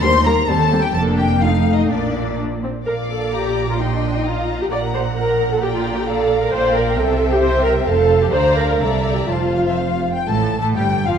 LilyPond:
<<
  \new Staff \with { instrumentName = "Violin section" } { \time 2/4 \key bes \major \tempo 4 = 130 c'''8 bes''8 a''8. g''16 | a''8 g''8 \tuplet 3/2 { f''4 ees''8 } | d''4 r4 | d'''2 |
c'''4 bes''4 | bes''4 bes''4 | bes''2 | \key f \major g''2 |
g''4 a''4 | bes''4 bes''4 | a''8 f''16 e''16 \tuplet 3/2 { f''4 g''8 } | \tuplet 3/2 { a''4 a''8 g''4 f''8 } | }
  \new Staff \with { instrumentName = "Violin section" } { \time 2/4 \key bes \major << { c''8 bes'8 a'8. g'16 | a'8 g'8 \tuplet 3/2 { f'4 ees'8 } | d'4 r4 | f''4 bes''4 |
g''4 f''4 | fis''2 | g''4 f''4 | \key f \major f''4 e''4~ |
e''4 f''4 | f''4 e''4 | f''4. r8 | \tuplet 3/2 { a'4 a'8 g'4 f'8 } | } \\ { r2 | r2 | r2 | d''2 |
ees''2 | bes'2 | d''4 d''4 | d''4 c''4~ |
c''4 c''4 | d''4 d''4 | c''4. r8 | r2 | } >> }
  \new Staff \with { instrumentName = "Viola section" } { \time 2/4 \key bes \major <g bes>8 <g bes>8 <g c'>8 <g c'>8 | <bes d'>4 <a ees'>4 | <bes d'>4 d'8 c'8 | bes'8 a'8 g'8. f'16 |
ees'16 d'8 ees'16 f'8. g'16 | d''8 c''8 bes'8. a'16 | g'16 f'8 g'16 a'8. bes'16 | \key f \major c''8 bes'8 a'8. g'16 |
c''8 bes'8 a'8. g'16 | c''8 bes'8 \tuplet 3/2 { a'4 g'8 } | f'4. r8 | \tuplet 3/2 { a4 a8 g4 f8 } | }
  \new Staff \with { instrumentName = "Cello section" } { \clef bass \time 2/4 \key bes \major ees,4 ees,4 | f,2 | bes,4. r8 | bes,2~ |
bes,2 | bes,2~ | bes,2 | \key f \major bes,4 c4~ |
c4 f,4 | d,4 c,4 | f,4. r8 | \tuplet 3/2 { a,4 a,8 g,4 f,8 } | }
  \new Staff \with { instrumentName = "Double bass section" } { \clef bass \time 2/4 \key bes \major ees,4 ees,4 | f,,2 | bes,,4. r8 | bes,,2~ |
bes,,2 | bes,,2~ | bes,,2 | \key f \major bes,,4 c,4~ |
c,4 f,,4 | d,4 c,4 | f,,4. r8 | a,,8 r8 g,,8 r8 | }
>>